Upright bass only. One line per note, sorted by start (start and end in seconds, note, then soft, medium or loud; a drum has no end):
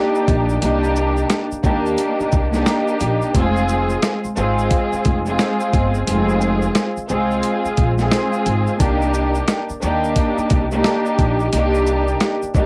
0.28 0.58 A#1 medium
0.62 1.22 C2 loud
1.52 muted upright bass stroke soft
1.64 1.94 D#2 medium
2.20 muted upright bass stroke soft
2.33 2.62 C2 medium
3.01 3.19 A#1 medium
3.35 3.94 F1 loud
4.25 muted upright bass stroke soft
4.37 4.67 G#1 medium
4.93 muted upright bass stroke soft
5.06 5.35 F1 medium
5.74 6.03 G1 medium
6.08 6.67 F1 loud
6.97 muted upright bass stroke soft
7.10 7.40 C2 medium
7.65 muted upright bass stroke soft
7.78 8.08 A#1 loud
8.46 8.65 G#1 loud
8.80 9.40 C2 loud
9.70 muted upright bass stroke soft
9.83 10.12 D#2 medium
10.38 muted upright bass stroke soft
10.51 10.81 C2 loud
11.19 11.49 A#1 medium
11.53 12.12 C2 loud
12.43 muted upright bass stroke soft
12.55 12.66 D#2 medium